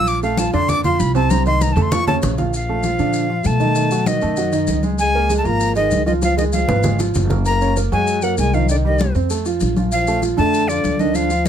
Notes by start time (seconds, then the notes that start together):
Already playing: A#1 F3 F4 F5
0.07 D6, high conga, maracas
0.22 A3 A4 F5 A5, high conga, maracas
0.37 F3 F4 F5 A5, high conga, maracas
0.53 F2 D3 D4 D5 C6, high conga, maracas
0.69 D6, high conga, low conga, maracas
0.84 F3 F4 F5 C6, high conga, low conga, maracas
0.99 C2 B5, high conga, maracas
1.15 C3 C4 C5 A5, high conga, maracas
1.29 C3 C4 C5 A#5, high conga, maracas
1.46 D#3 D#4 D#5 C6, maracas
1.61 A#5, high conga, maracas
1.73 F2 A3 A5, maracas
1.77 A4 A5, low conga
1.82 C6
1.92 F3 F4 F5 C#6, low conga, maracas
2.07 C#3 C#4 C#5 A5, low conga, maracas
2.22 A#1, low conga, maracas
2.38 F3 F4 F5, low conga, maracas
2.54 F3 F5, high conga, maracas
2.69 A3 A4, high conga
2.83 F3 F4, high conga, maracas
2.99 A#2 D3 D4, high conga, maracas
3.13 high conga, maracas
3.30 F3 F4, high conga
3.44 B2 A3 A5, high conga, maracas
3.60 D#3 D#4, high conga, maracas
3.75 D#3 D#4, high conga, maracas
3.91 F#3 F#4, high conga, maracas
4.06 D#3 D#5, high conga, maracas
4.21 F#2 A3 A4, high conga, maracas
4.37 F#3 F#4, high conga, maracas
4.52 D#3 D#4, high conga, maracas
4.67 C#2, high conga, maracas
4.83 G#3 G#4, high conga, maracas
4.98 G#3 G#5, high conga, maracas
5.14 A#3 A#4, high conga
5.30 G#3 G#4, high conga, maracas
5.38 A3 A5
5.45 G#1 F3 A#3 F4 A#5, high conga, maracas
5.60 high conga, maracas
5.76 D#3 G#3 G#4 D#5, high conga, maracas
5.91 C#2, high conga, maracas
6.06 D#3 F3 F4 D#5, high conga, maracas
6.22 F3 F4 F5, high conga, maracas
6.37 D#3 G#3 G#4 D#5, high conga, maracas
6.52 F3 F5, high conga, maracas
6.68 G#1 B3 B4, low conga, maracas
6.83 G#3 G#4, low conga, maracas
6.99 F3 F4, low conga, maracas
7.14 F#1, low conga, maracas
7.30 A#3 A#4, low conga, maracas
7.45 A#3 A#5, high conga, maracas
7.61 C#4 C#5, high conga, maracas
7.76 A#3 A#4, high conga, maracas
7.92 F#2 F#3 G#3 F#4 G#5, high conga, maracas
8.07 high conga, maracas
8.22 F#3 A#3 A#4 F#5, high conga, maracas
8.38 C2 G#3 G#5, high conga, maracas
8.54 D#3 F3 D#4 F5, high conga, maracas
8.69 D3 D#3 D#4 D5, high conga, maracas
8.85 D#3 G3 G4 D#5, high conga
8.99 high conga, maracas
9.15 F2 C4 C5, high conga, maracas
9.30 A3 A4, high conga, maracas
9.45 F3 F4, high conga, maracas
9.60 A#1, high conga, maracas
9.77 F3 F4, high conga, maracas
9.92 F3 F5, high conga, maracas
10.07 A3 A4, maracas
10.22 F3 F4, high conga, maracas
10.37 F2 D3 A3 D4 A5, high conga, maracas
10.53 high conga, maracas
10.68 D3 F3 F4 D5, high conga, maracas
10.84 D2, high conga, maracas
10.99 D3 D#3 D4 D#5, high conga, maracas
11.14 D3 F3 D4 F5, high conga, maracas
11.30 F3 F4, high conga, maracas
11.46 high conga, maracas